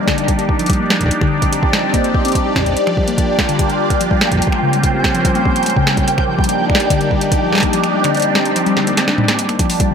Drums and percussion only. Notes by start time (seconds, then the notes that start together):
0.07 finger snap, kick, snare
0.18 closed hi-hat
0.28 kick, closed hi-hat
0.39 closed hi-hat
0.49 kick
0.59 closed hi-hat
0.66 kick, closed hi-hat
0.70 closed hi-hat
0.73 closed hi-hat
0.90 snare
1.01 kick, closed hi-hat
1.03 kick
1.06 kick
1.08 kick, closed hi-hat
1.21 finger snap, kick
1.42 kick, closed hi-hat
1.53 closed hi-hat
1.63 kick
1.73 finger snap, snare
1.94 kick, closed hi-hat
2.04 closed hi-hat
2.14 kick
2.25 closed hi-hat
2.28 closed hi-hat
2.32 kick, closed hi-hat
2.35 closed hi-hat
2.56 kick, snare
2.59 kick
2.63 kick
2.66 kick, closed hi-hat
2.70 kick
2.73 kick, closed hi-hat
2.87 finger snap
2.97 kick
3.08 closed hi-hat
3.18 kick, closed hi-hat
3.39 finger snap, kick, snare
3.49 closed hi-hat
3.59 kick, closed hi-hat
3.70 closed hi-hat
3.90 kick, closed hi-hat
4.01 closed hi-hat
4.11 kick
4.21 snare
4.32 kick, closed hi-hat
4.35 kick
4.39 kick, closed hi-hat
4.47 kick
4.52 finger snap
4.73 closed hi-hat
4.83 kick, closed hi-hat
5.04 finger snap, kick, snare
5.15 closed hi-hat
5.25 kick, closed hi-hat
5.35 closed hi-hat
5.45 kick
5.56 closed hi-hat
5.63 closed hi-hat
5.66 closed hi-hat
5.76 kick
5.87 snare
5.97 kick, closed hi-hat
6.08 closed hi-hat
6.18 finger snap, kick
6.39 kick
6.44 closed hi-hat
6.49 closed hi-hat
6.70 finger snap, kick
6.75 snare
6.80 closed hi-hat
6.90 kick, closed hi-hat
7.01 closed hi-hat
7.11 kick
7.21 closed hi-hat
7.32 kick, closed hi-hat
7.52 snare
7.55 snare
7.58 snare
7.60 kick, snare, closed hi-hat
7.73 closed hi-hat
7.84 finger snap, closed hi-hat
8.04 finger snap, closed hi-hat
8.15 closed hi-hat
8.17 closed hi-hat
8.20 closed hi-hat
8.22 closed hi-hat
8.35 snare
8.45 closed hi-hat
8.56 closed hi-hat
8.66 closed hi-hat
8.77 snare
8.87 closed hi-hat
8.97 snare, closed hi-hat
9.08 snare
9.18 mid tom
9.28 snare, closed hi-hat
9.39 closed hi-hat
9.49 finger snap, closed hi-hat
9.59 kick, closed hi-hat
9.70 open hi-hat
9.80 kick, closed hi-hat